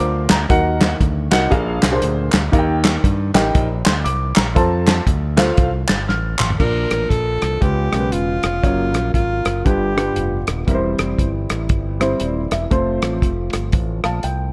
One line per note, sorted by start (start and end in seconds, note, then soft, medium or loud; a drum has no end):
0.00 0.26 D2 medium
0.00 0.25 D4 medium
0.00 0.25 F4 medium
0.00 0.25 A#4 medium
0.00 0.25 C5 medium
0.00 0.28 D6 medium
0.29 0.47 D2 loud
0.29 0.78 A#5 medium
0.29 snare loud
0.29 clap loud
0.29 closed hi-hat medium
0.49 0.93 D#2 medium
0.49 1.28 D#3 medium
0.49 0.93 D#4 medium
0.49 0.93 F#4 medium
0.49 0.93 A#4 medium
0.49 0.94 F#5 loud
0.49 kick loud
0.49 closed hi-hat medium
0.81 snare loud
0.81 clap medium
0.81 closed hi-hat medium
1.01 1.27 D2 medium
1.01 kick medium
1.01 closed hi-hat medium
1.31 1.49 C2 medium
1.31 1.51 D#4 medium
1.31 1.51 F#4 medium
1.31 1.50 A#4 medium
1.31 1.52 F#5 loud
1.31 snare loud
1.31 clap medium
1.31 closed hi-hat medium
1.50 1.78 A#1 loud
1.50 2.29 A#2 medium
1.50 1.86 D4 medium
1.50 1.86 G#4 loud
1.50 1.86 A#4 loud
1.50 1.86 F5 loud
1.50 kick loud
1.50 closed hi-hat medium
1.83 2.00 C2 medium
1.83 snare loud
1.83 clap loud
1.83 closed hi-hat medium
1.91 2.28 D4 medium
1.91 2.28 G#4 medium
1.91 2.28 A#4 medium
1.91 2.29 C5 medium
2.02 2.29 D2 loud
2.02 closed hi-hat medium
2.32 2.50 D2 medium
2.32 snare loud
2.32 clap loud
2.32 closed hi-hat medium
2.52 2.96 D#2 loud
2.52 3.30 D#3 medium
2.52 2.96 D#4 medium
2.52 2.96 G4 medium
2.52 2.96 A#4 medium
2.52 2.60 F5 medium
2.52 kick loud
2.52 closed hi-hat medium
2.59 2.99 G5 loud
2.84 snare loud
2.84 clap medium
2.84 closed hi-hat medium
3.04 3.30 G2 loud
3.04 kick medium
3.04 closed hi-hat medium
3.34 3.51 A1 loud
3.34 3.65 D#4 loud
3.34 3.65 G4 medium
3.34 3.65 A#4 medium
3.34 3.66 G5 loud
3.34 snare loud
3.34 clap medium
3.34 closed hi-hat medium
3.55 3.81 A#1 loud
3.55 kick loud
3.55 closed hi-hat medium
3.85 4.03 D2 medium
3.85 4.04 C6 medium
3.85 snare loud
3.85 clap loud
3.85 closed hi-hat medium
4.04 4.32 C2 medium
4.04 4.34 D6 medium
4.04 closed hi-hat medium
4.36 4.54 A#1 medium
4.36 4.84 A#5 medium
4.36 snare loud
4.36 clap medium
4.36 closed hi-hat medium
4.55 4.99 F2 loud
4.55 4.99 F4 medium
4.55 4.99 A4 medium
4.55 4.99 C5 medium
4.55 4.99 A5 medium
4.55 kick loud
4.55 closed hi-hat medium
4.87 snare loud
4.87 clap medium
4.87 closed hi-hat medium
5.07 5.50 D2 loud
5.07 kick medium
5.07 closed hi-hat medium
5.37 5.68 F4 loud
5.37 5.68 A4 medium
5.37 5.68 C5 medium
5.37 5.69 F5 medium
5.37 snare loud
5.37 clap loud
5.37 closed hi-hat medium
5.57 5.84 C2 loud
5.57 kick loud
5.57 closed hi-hat medium
5.88 6.06 G1 medium
5.88 6.07 A6 medium
5.88 snare loud
5.88 clap loud
5.88 closed hi-hat medium
6.08 6.35 A1 loud
6.08 6.38 F6 medium
6.08 snare medium
6.39 6.57 A1 medium
6.39 6.88 C6 medium
6.39 clap loud
6.39 mid tom loud
6.50 floor tom medium
6.59 6.86 A#1 medium
6.59 7.38 A#2 medium
6.59 7.60 F3 medium
6.59 7.15 A#3 medium
6.59 7.60 A#3 medium
6.59 7.60 D4 medium
6.59 7.15 D4 medium
6.59 8.61 F4 medium
6.59 7.15 F4 medium
6.59 7.11 A#4 medium
6.59 7.16 D5 medium
6.59 kick loud
6.59 crash medium
6.91 7.08 A1 medium
6.91 cross-stick loud
6.91 closed hi-hat medium
7.10 7.37 A#1 medium
7.10 7.63 A4 loud
7.10 kick medium
7.10 closed hi-hat medium
7.42 7.59 C2 medium
7.42 cross-stick loud
7.42 closed hi-hat medium
7.61 7.88 C#2 medium
7.61 8.39 C#3 medium
7.61 7.86 G#3 medium
7.61 8.63 G#3 medium
7.61 8.62 B3 medium
7.61 7.86 C#4 medium
7.61 9.64 C#4 medium
7.61 7.86 F4 medium
7.61 8.14 G4 medium
7.61 7.86 B4 medium
7.61 kick loud
7.61 closed hi-hat medium
7.92 8.09 B1 medium
7.92 8.31 G#3 medium
7.92 8.31 C#4 medium
7.92 8.31 F4 medium
7.92 7.98 A#4 medium
7.92 cross-stick medium
7.92 closed hi-hat medium
7.99 8.35 B4 medium
8.12 8.39 E1 medium
8.12 9.13 F4 medium
8.12 closed hi-hat medium
8.43 8.61 F1 medium
8.43 cross-stick loud
8.43 closed hi-hat medium
8.62 8.94 F#1 medium
8.62 9.64 F#3 medium
8.62 9.19 F#3 medium
8.62 9.64 A#3 medium
8.62 9.19 A#3 medium
8.62 9.19 C#4 medium
8.62 9.64 A#4 medium
8.62 9.19 C#5 medium
8.62 kick medium
8.62 closed hi-hat medium
8.94 9.11 A#1 medium
8.94 cross-stick medium
8.94 closed hi-hat medium
9.14 9.41 G#1 medium
9.14 9.67 F4 medium
9.14 kick medium
9.14 closed hi-hat medium
9.45 9.62 F#1 medium
9.45 cross-stick loud
9.45 closed hi-hat medium
9.65 10.09 G1 loud
9.65 10.44 G2 medium
9.65 9.90 G3 medium
9.65 12.69 G3 medium
9.65 10.67 B3 medium
9.65 9.90 D4 medium
9.65 10.67 D4 medium
9.65 9.90 F4 medium
9.65 10.67 F4 medium
9.65 10.48 G4 medium
9.65 9.91 B4 medium
9.65 kick medium
9.65 closed hi-hat medium
9.96 10.35 G3 medium
9.96 10.36 D4 medium
9.96 10.36 F4 medium
9.96 10.36 B4 medium
9.96 cross-stick loud
9.96 closed hi-hat medium
10.16 10.43 F1 medium
10.16 closed hi-hat medium
10.47 10.65 D#1 medium
10.47 cross-stick loud
10.47 closed hi-hat medium
10.67 10.94 E1 medium
10.67 11.46 E3 medium
10.67 12.70 E3 medium
10.67 11.23 G3 medium
10.67 11.23 C4 medium
10.67 14.53 C4 medium
10.67 12.70 E4 medium
10.67 11.24 E4 medium
10.67 10.75 A#4 medium
10.67 kick loud
10.67 closed hi-hat medium
10.75 11.27 C5 medium
10.99 11.16 F1 medium
10.99 cross-stick loud
10.99 closed hi-hat medium
11.19 11.45 G1 medium
11.19 kick medium
11.19 closed hi-hat medium
11.50 11.67 A1 medium
11.50 cross-stick loud
11.50 closed hi-hat medium
11.69 12.13 G1 medium
11.69 kick medium
11.69 closed hi-hat medium
12.00 12.39 G3 medium
12.00 12.40 C4 medium
12.00 12.40 E4 medium
12.00 12.40 C5 medium
12.00 cross-stick loud
12.00 closed hi-hat medium
12.20 12.47 D#1 medium
12.20 12.50 D5 medium
12.20 closed hi-hat medium
12.51 12.68 E1 medium
12.51 13.00 E5 medium
12.51 cross-stick loud
12.51 closed hi-hat medium
12.71 12.98 F1 medium
12.71 14.53 F3 medium
12.71 13.27 A3 medium
12.71 14.53 A3 medium
12.71 13.27 C4 medium
12.71 14.53 F4 medium
12.71 13.28 F4 medium
12.71 13.28 C5 medium
12.71 kick medium
12.71 closed hi-hat medium
13.02 13.19 A1 medium
13.02 cross-stick loud
13.02 closed hi-hat medium
13.22 13.49 F1 medium
13.22 kick medium
13.22 closed hi-hat medium
13.53 13.71 G1 medium
13.53 cross-stick loud
13.53 closed hi-hat medium
13.72 14.00 A1 medium
13.72 kick loud
13.72 closed hi-hat medium
14.04 14.21 A#1 medium
14.04 14.23 F5 medium
14.04 14.23 A5 medium
14.04 cross-stick loud
14.04 closed hi-hat soft
14.23 14.53 C2 medium
14.23 14.53 G5 medium
14.23 closed hi-hat medium